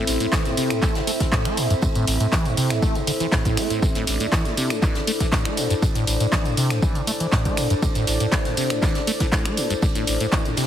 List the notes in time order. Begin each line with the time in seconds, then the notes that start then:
Already playing: C4 E4 A4 C5 E5
0.07 A1, snare, open hi-hat, ride, tambourine
0.20 A2, closed hi-hat, ride, tambourine
0.32 E3, kick, snare, clap, ride, tambourine
0.45 A2, snare, closed hi-hat, tambourine
0.57 C3, open hi-hat, ride, tambourine
0.70 A2, finger snap, closed hi-hat, tambourine
0.82 A3, kick, clap, ride, tambourine
0.95 C3, snare, closed hi-hat, tambourine
1.07 A3, open hi-hat, ride, tambourine
1.20 E3, kick, snare, closed hi-hat, tambourine
1.32 A2, kick, snare, clap, ride, tambourine
1.45 A3, finger snap, closed hi-hat, tambourine
1.57 A#2, open hi-hat, ride, tambourine
1.70 G2, closed hi-hat, tambourine
1.81 A2, kick, ride, tambourine
1.95 A2, closed hi-hat, tambourine
2.07 A1, open hi-hat, ride, tambourine
2.20 A2, closed hi-hat, ride, tambourine
2.32 E3, kick, snare, clap, ride, tambourine
2.45 A2, closed hi-hat, tambourine
2.57 C3, open hi-hat, ride, tambourine
2.70 A2, finger snap, snare, closed hi-hat, tambourine
2.82 A3, kick, ride, tambourine
2.95 C3, closed hi-hat, tambourine
3.07 D3, open hi-hat, ride, tambourine
3.20 E3, closed hi-hat, ride, tambourine
3.32 A2, kick, snare, clap, ride, tambourine
3.45 A2, kick, closed hi-hat, tambourine
3.57 A3, finger snap, open hi-hat, ride, tambourine
3.70 A2, closed hi-hat, tambourine
3.82 A2 D4 D5, kick, ride, tambourine
3.95 A2, snare, closed hi-hat, tambourine
4.07 A1, snare, open hi-hat, ride, tambourine
4.20 A2, closed hi-hat, ride, tambourine
4.32 E3, kick, snare, clap, ride, tambourine
4.45 A2, snare, closed hi-hat, tambourine
4.57 C3, open hi-hat, ride, tambourine
4.70 A2, finger snap, closed hi-hat, tambourine
4.79 E3 C5, kick, clap, ride, tambourine
4.95 C3, snare, closed hi-hat, tambourine
5.07 A3, open hi-hat, ride, tambourine
5.20 E3, kick, snare, closed hi-hat, tambourine
5.32 A2, kick, snare, clap, ride, tambourine
5.45 A3, finger snap, closed hi-hat, tambourine
5.57 A#2, open hi-hat, ride, tambourine
5.70 G2, closed hi-hat, tambourine
5.82 A2, kick, ride, tambourine
5.95 A2, closed hi-hat, tambourine
6.07 A1, open hi-hat, ride, tambourine
6.20 A2, closed hi-hat, ride, tambourine
6.32 E3, kick, snare, clap, tambourine
6.45 A2, closed hi-hat, tambourine
6.57 C3, open hi-hat, ride, tambourine
6.70 A2, finger snap, snare, closed hi-hat, tambourine
6.82 E3, kick, ride, tambourine
6.95 C3, closed hi-hat, tambourine
7.07 A3, open hi-hat, ride, tambourine
7.19 E3, closed hi-hat, ride, tambourine
7.32 A2, kick, snare, clap, ride, tambourine
7.45 A3, kick, closed hi-hat, tambourine
7.56 A#2, finger snap, open hi-hat, ride, tambourine
7.70 G2, closed hi-hat, tambourine
7.82 A2, kick, ride, tambourine
7.95 A2, snare, closed hi-hat, tambourine
8.07 A1, snare, open hi-hat, ride, tambourine
8.20 A2, closed hi-hat, ride, tambourine
8.32 E3, kick, snare, clap, ride, tambourine
8.45 A2, snare, closed hi-hat, tambourine
8.57 C3, open hi-hat, ride, tambourine
8.70 A2, finger snap, closed hi-hat, tambourine
8.82 E3, kick, clap, ride, tambourine
8.95 C3, snare, closed hi-hat, tambourine
9.07 A3, open hi-hat, ride, tambourine
9.20 E3, kick, snare, closed hi-hat, tambourine
9.32 A2, kick, snare, clap, ride, tambourine
9.45 A3, finger snap, closed hi-hat, tambourine
9.57 A#2, open hi-hat, ride, tambourine
9.70 G2, closed hi-hat, tambourine
9.82 A2, kick, ride, tambourine
9.95 A2, closed hi-hat, tambourine
10.07 A1, open hi-hat, ride, tambourine
10.20 A2, closed hi-hat, ride, tambourine
10.32 E3, kick, snare, clap, ride, tambourine
10.45 A2, closed hi-hat, tambourine
10.57 C3, snare, open hi-hat, ride, tambourine
10.63 snare, ride